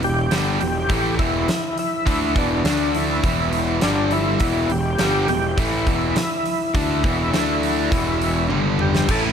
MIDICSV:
0, 0, Header, 1, 6, 480
1, 0, Start_track
1, 0, Key_signature, 1, "minor"
1, 0, Tempo, 585366
1, 1697, Time_signature, 4, 2, 24, 8
1, 7645, End_track
2, 0, Start_track
2, 0, Title_t, "Tonewheel organ"
2, 0, Program_c, 0, 16
2, 36, Note_on_c, 0, 67, 95
2, 487, Note_off_c, 0, 67, 0
2, 497, Note_on_c, 0, 67, 96
2, 944, Note_off_c, 0, 67, 0
2, 978, Note_on_c, 0, 64, 74
2, 1458, Note_off_c, 0, 64, 0
2, 1468, Note_on_c, 0, 64, 88
2, 1951, Note_on_c, 0, 62, 85
2, 1956, Note_off_c, 0, 64, 0
2, 2421, Note_on_c, 0, 64, 84
2, 2437, Note_off_c, 0, 62, 0
2, 2887, Note_off_c, 0, 64, 0
2, 2897, Note_on_c, 0, 64, 74
2, 3119, Note_off_c, 0, 64, 0
2, 3145, Note_on_c, 0, 62, 72
2, 3379, Note_on_c, 0, 64, 95
2, 3387, Note_off_c, 0, 62, 0
2, 3864, Note_on_c, 0, 67, 93
2, 3870, Note_off_c, 0, 64, 0
2, 4330, Note_off_c, 0, 67, 0
2, 4339, Note_on_c, 0, 67, 88
2, 4576, Note_on_c, 0, 64, 80
2, 4584, Note_off_c, 0, 67, 0
2, 6944, Note_off_c, 0, 64, 0
2, 7228, Note_on_c, 0, 67, 67
2, 7470, Note_off_c, 0, 67, 0
2, 7472, Note_on_c, 0, 69, 85
2, 7577, Note_off_c, 0, 69, 0
2, 7645, End_track
3, 0, Start_track
3, 0, Title_t, "String machine"
3, 0, Program_c, 1, 50
3, 7452, Note_on_c, 1, 64, 71
3, 7455, Note_on_c, 1, 57, 84
3, 7455, Note_on_c, 1, 61, 82
3, 7456, Note_on_c, 1, 69, 77
3, 7645, Note_off_c, 1, 57, 0
3, 7645, Note_off_c, 1, 61, 0
3, 7645, Note_off_c, 1, 64, 0
3, 7645, Note_off_c, 1, 69, 0
3, 7645, End_track
4, 0, Start_track
4, 0, Title_t, "Overdriven electric guitar"
4, 0, Program_c, 2, 29
4, 15, Note_on_c, 2, 40, 53
4, 21, Note_on_c, 2, 47, 63
4, 209, Note_off_c, 2, 40, 0
4, 213, Note_off_c, 2, 47, 0
4, 256, Note_on_c, 2, 43, 87
4, 261, Note_on_c, 2, 50, 84
4, 264, Note_on_c, 2, 55, 85
4, 487, Note_off_c, 2, 43, 0
4, 490, Note_off_c, 2, 50, 0
4, 490, Note_on_c, 2, 40, 53
4, 494, Note_off_c, 2, 55, 0
4, 494, Note_on_c, 2, 47, 67
4, 686, Note_off_c, 2, 40, 0
4, 688, Note_off_c, 2, 47, 0
4, 728, Note_on_c, 2, 45, 95
4, 733, Note_on_c, 2, 52, 84
4, 737, Note_on_c, 2, 57, 86
4, 965, Note_off_c, 2, 45, 0
4, 966, Note_on_c, 2, 40, 77
4, 968, Note_off_c, 2, 52, 0
4, 970, Note_off_c, 2, 57, 0
4, 971, Note_on_c, 2, 47, 82
4, 977, Note_on_c, 2, 52, 88
4, 1204, Note_off_c, 2, 40, 0
4, 1207, Note_off_c, 2, 47, 0
4, 1210, Note_off_c, 2, 52, 0
4, 1687, Note_on_c, 2, 50, 82
4, 1695, Note_on_c, 2, 62, 103
4, 1696, Note_on_c, 2, 57, 101
4, 1924, Note_off_c, 2, 50, 0
4, 1927, Note_on_c, 2, 40, 73
4, 1928, Note_off_c, 2, 57, 0
4, 1928, Note_off_c, 2, 62, 0
4, 1933, Note_on_c, 2, 47, 80
4, 1938, Note_on_c, 2, 52, 73
4, 2164, Note_off_c, 2, 40, 0
4, 2167, Note_off_c, 2, 47, 0
4, 2169, Note_off_c, 2, 52, 0
4, 2172, Note_on_c, 2, 50, 89
4, 2177, Note_on_c, 2, 57, 89
4, 2181, Note_on_c, 2, 62, 91
4, 2646, Note_off_c, 2, 50, 0
4, 2648, Note_off_c, 2, 57, 0
4, 2650, Note_off_c, 2, 62, 0
4, 2650, Note_on_c, 2, 40, 84
4, 2655, Note_on_c, 2, 47, 79
4, 2660, Note_on_c, 2, 52, 86
4, 3124, Note_off_c, 2, 40, 0
4, 3127, Note_off_c, 2, 47, 0
4, 3129, Note_on_c, 2, 43, 76
4, 3130, Note_off_c, 2, 52, 0
4, 3136, Note_on_c, 2, 50, 92
4, 3140, Note_on_c, 2, 55, 102
4, 3604, Note_off_c, 2, 43, 0
4, 3608, Note_off_c, 2, 50, 0
4, 3609, Note_off_c, 2, 55, 0
4, 3613, Note_on_c, 2, 40, 81
4, 3614, Note_on_c, 2, 47, 89
4, 3621, Note_on_c, 2, 52, 109
4, 3846, Note_off_c, 2, 40, 0
4, 3847, Note_off_c, 2, 47, 0
4, 3850, Note_off_c, 2, 52, 0
4, 3856, Note_on_c, 2, 40, 51
4, 3859, Note_on_c, 2, 47, 64
4, 4047, Note_off_c, 2, 40, 0
4, 4049, Note_off_c, 2, 47, 0
4, 4086, Note_on_c, 2, 43, 96
4, 4090, Note_on_c, 2, 50, 91
4, 4097, Note_on_c, 2, 55, 101
4, 4323, Note_off_c, 2, 43, 0
4, 4325, Note_off_c, 2, 50, 0
4, 4328, Note_off_c, 2, 55, 0
4, 4335, Note_on_c, 2, 40, 53
4, 4337, Note_on_c, 2, 47, 66
4, 4526, Note_off_c, 2, 40, 0
4, 4528, Note_off_c, 2, 47, 0
4, 4570, Note_on_c, 2, 45, 87
4, 4573, Note_on_c, 2, 52, 94
4, 4575, Note_on_c, 2, 57, 100
4, 4805, Note_off_c, 2, 45, 0
4, 4807, Note_off_c, 2, 52, 0
4, 4807, Note_off_c, 2, 57, 0
4, 4808, Note_on_c, 2, 40, 81
4, 4814, Note_on_c, 2, 47, 86
4, 4816, Note_on_c, 2, 52, 106
4, 5044, Note_off_c, 2, 40, 0
4, 5047, Note_off_c, 2, 47, 0
4, 5048, Note_off_c, 2, 52, 0
4, 5523, Note_on_c, 2, 50, 93
4, 5529, Note_on_c, 2, 57, 89
4, 5534, Note_on_c, 2, 62, 97
4, 5762, Note_off_c, 2, 50, 0
4, 5765, Note_off_c, 2, 57, 0
4, 5766, Note_on_c, 2, 40, 77
4, 5767, Note_off_c, 2, 62, 0
4, 5770, Note_on_c, 2, 47, 82
4, 5774, Note_on_c, 2, 52, 88
4, 6002, Note_off_c, 2, 47, 0
4, 6003, Note_off_c, 2, 40, 0
4, 6006, Note_on_c, 2, 50, 73
4, 6007, Note_off_c, 2, 52, 0
4, 6013, Note_on_c, 2, 57, 80
4, 6017, Note_on_c, 2, 62, 93
4, 6484, Note_off_c, 2, 50, 0
4, 6484, Note_on_c, 2, 40, 88
4, 6487, Note_on_c, 2, 47, 95
4, 6488, Note_off_c, 2, 57, 0
4, 6489, Note_off_c, 2, 62, 0
4, 6494, Note_on_c, 2, 52, 87
4, 6960, Note_off_c, 2, 40, 0
4, 6963, Note_on_c, 2, 43, 85
4, 6965, Note_off_c, 2, 47, 0
4, 6968, Note_off_c, 2, 52, 0
4, 6969, Note_on_c, 2, 50, 93
4, 6972, Note_on_c, 2, 55, 83
4, 7438, Note_off_c, 2, 50, 0
4, 7441, Note_on_c, 2, 45, 98
4, 7443, Note_off_c, 2, 43, 0
4, 7444, Note_off_c, 2, 55, 0
4, 7447, Note_on_c, 2, 52, 82
4, 7454, Note_on_c, 2, 57, 88
4, 7462, Note_on_c, 2, 61, 79
4, 7465, Note_on_c, 2, 64, 108
4, 7645, Note_off_c, 2, 45, 0
4, 7645, Note_off_c, 2, 52, 0
4, 7645, Note_off_c, 2, 57, 0
4, 7645, Note_off_c, 2, 61, 0
4, 7645, Note_off_c, 2, 64, 0
4, 7645, End_track
5, 0, Start_track
5, 0, Title_t, "Picked electric bass"
5, 0, Program_c, 3, 34
5, 23, Note_on_c, 3, 28, 68
5, 244, Note_off_c, 3, 28, 0
5, 266, Note_on_c, 3, 31, 77
5, 486, Note_off_c, 3, 31, 0
5, 502, Note_on_c, 3, 28, 73
5, 723, Note_off_c, 3, 28, 0
5, 739, Note_on_c, 3, 33, 83
5, 961, Note_off_c, 3, 33, 0
5, 977, Note_on_c, 3, 28, 90
5, 1200, Note_off_c, 3, 28, 0
5, 1696, Note_on_c, 3, 38, 83
5, 1919, Note_off_c, 3, 38, 0
5, 1935, Note_on_c, 3, 28, 82
5, 2158, Note_off_c, 3, 28, 0
5, 2172, Note_on_c, 3, 38, 73
5, 2620, Note_off_c, 3, 38, 0
5, 2655, Note_on_c, 3, 28, 88
5, 3102, Note_off_c, 3, 28, 0
5, 3133, Note_on_c, 3, 31, 85
5, 3581, Note_off_c, 3, 31, 0
5, 3612, Note_on_c, 3, 28, 83
5, 3836, Note_off_c, 3, 28, 0
5, 3852, Note_on_c, 3, 28, 68
5, 4076, Note_off_c, 3, 28, 0
5, 4094, Note_on_c, 3, 31, 85
5, 4317, Note_off_c, 3, 31, 0
5, 4333, Note_on_c, 3, 28, 72
5, 4556, Note_off_c, 3, 28, 0
5, 4575, Note_on_c, 3, 33, 86
5, 4798, Note_off_c, 3, 33, 0
5, 4813, Note_on_c, 3, 28, 80
5, 5037, Note_off_c, 3, 28, 0
5, 5534, Note_on_c, 3, 38, 90
5, 5758, Note_off_c, 3, 38, 0
5, 5776, Note_on_c, 3, 28, 79
5, 5999, Note_off_c, 3, 28, 0
5, 6008, Note_on_c, 3, 38, 77
5, 6459, Note_off_c, 3, 38, 0
5, 6495, Note_on_c, 3, 28, 85
5, 6943, Note_off_c, 3, 28, 0
5, 6970, Note_on_c, 3, 31, 87
5, 7421, Note_off_c, 3, 31, 0
5, 7453, Note_on_c, 3, 33, 86
5, 7645, Note_off_c, 3, 33, 0
5, 7645, End_track
6, 0, Start_track
6, 0, Title_t, "Drums"
6, 23, Note_on_c, 9, 46, 44
6, 105, Note_off_c, 9, 46, 0
6, 256, Note_on_c, 9, 46, 59
6, 262, Note_on_c, 9, 38, 98
6, 338, Note_off_c, 9, 46, 0
6, 344, Note_off_c, 9, 38, 0
6, 498, Note_on_c, 9, 46, 46
6, 580, Note_off_c, 9, 46, 0
6, 734, Note_on_c, 9, 46, 67
6, 736, Note_on_c, 9, 36, 102
6, 816, Note_off_c, 9, 46, 0
6, 818, Note_off_c, 9, 36, 0
6, 976, Note_on_c, 9, 36, 95
6, 979, Note_on_c, 9, 46, 48
6, 1058, Note_off_c, 9, 36, 0
6, 1061, Note_off_c, 9, 46, 0
6, 1216, Note_on_c, 9, 46, 65
6, 1222, Note_on_c, 9, 38, 99
6, 1298, Note_off_c, 9, 46, 0
6, 1304, Note_off_c, 9, 38, 0
6, 1456, Note_on_c, 9, 46, 50
6, 1538, Note_off_c, 9, 46, 0
6, 1695, Note_on_c, 9, 36, 93
6, 1697, Note_on_c, 9, 46, 62
6, 1777, Note_off_c, 9, 36, 0
6, 1779, Note_off_c, 9, 46, 0
6, 1933, Note_on_c, 9, 46, 45
6, 1934, Note_on_c, 9, 36, 86
6, 2015, Note_off_c, 9, 46, 0
6, 2016, Note_off_c, 9, 36, 0
6, 2173, Note_on_c, 9, 46, 69
6, 2179, Note_on_c, 9, 38, 106
6, 2255, Note_off_c, 9, 46, 0
6, 2261, Note_off_c, 9, 38, 0
6, 2415, Note_on_c, 9, 46, 52
6, 2497, Note_off_c, 9, 46, 0
6, 2653, Note_on_c, 9, 46, 64
6, 2654, Note_on_c, 9, 36, 93
6, 2735, Note_off_c, 9, 46, 0
6, 2736, Note_off_c, 9, 36, 0
6, 2891, Note_on_c, 9, 46, 49
6, 2973, Note_off_c, 9, 46, 0
6, 3127, Note_on_c, 9, 46, 62
6, 3133, Note_on_c, 9, 38, 105
6, 3209, Note_off_c, 9, 46, 0
6, 3215, Note_off_c, 9, 38, 0
6, 3368, Note_on_c, 9, 46, 44
6, 3450, Note_off_c, 9, 46, 0
6, 3605, Note_on_c, 9, 46, 64
6, 3612, Note_on_c, 9, 36, 86
6, 3687, Note_off_c, 9, 46, 0
6, 3694, Note_off_c, 9, 36, 0
6, 3851, Note_on_c, 9, 46, 40
6, 3933, Note_off_c, 9, 46, 0
6, 4088, Note_on_c, 9, 46, 63
6, 4094, Note_on_c, 9, 38, 106
6, 4170, Note_off_c, 9, 46, 0
6, 4176, Note_off_c, 9, 38, 0
6, 4331, Note_on_c, 9, 46, 45
6, 4413, Note_off_c, 9, 46, 0
6, 4573, Note_on_c, 9, 36, 101
6, 4574, Note_on_c, 9, 46, 64
6, 4655, Note_off_c, 9, 36, 0
6, 4656, Note_off_c, 9, 46, 0
6, 4812, Note_on_c, 9, 36, 87
6, 4814, Note_on_c, 9, 46, 47
6, 4894, Note_off_c, 9, 36, 0
6, 4896, Note_off_c, 9, 46, 0
6, 5050, Note_on_c, 9, 46, 60
6, 5056, Note_on_c, 9, 38, 100
6, 5132, Note_off_c, 9, 46, 0
6, 5138, Note_off_c, 9, 38, 0
6, 5293, Note_on_c, 9, 46, 43
6, 5375, Note_off_c, 9, 46, 0
6, 5531, Note_on_c, 9, 36, 87
6, 5533, Note_on_c, 9, 46, 62
6, 5613, Note_off_c, 9, 36, 0
6, 5615, Note_off_c, 9, 46, 0
6, 5773, Note_on_c, 9, 36, 96
6, 5776, Note_on_c, 9, 46, 47
6, 5855, Note_off_c, 9, 36, 0
6, 5858, Note_off_c, 9, 46, 0
6, 6015, Note_on_c, 9, 46, 66
6, 6020, Note_on_c, 9, 38, 95
6, 6097, Note_off_c, 9, 46, 0
6, 6102, Note_off_c, 9, 38, 0
6, 6258, Note_on_c, 9, 46, 57
6, 6340, Note_off_c, 9, 46, 0
6, 6494, Note_on_c, 9, 36, 100
6, 6499, Note_on_c, 9, 46, 68
6, 6576, Note_off_c, 9, 36, 0
6, 6581, Note_off_c, 9, 46, 0
6, 6736, Note_on_c, 9, 46, 52
6, 6818, Note_off_c, 9, 46, 0
6, 6973, Note_on_c, 9, 48, 55
6, 7055, Note_off_c, 9, 48, 0
6, 7209, Note_on_c, 9, 45, 67
6, 7291, Note_off_c, 9, 45, 0
6, 7336, Note_on_c, 9, 38, 72
6, 7418, Note_off_c, 9, 38, 0
6, 7450, Note_on_c, 9, 49, 109
6, 7452, Note_on_c, 9, 36, 94
6, 7532, Note_off_c, 9, 49, 0
6, 7534, Note_off_c, 9, 36, 0
6, 7645, End_track
0, 0, End_of_file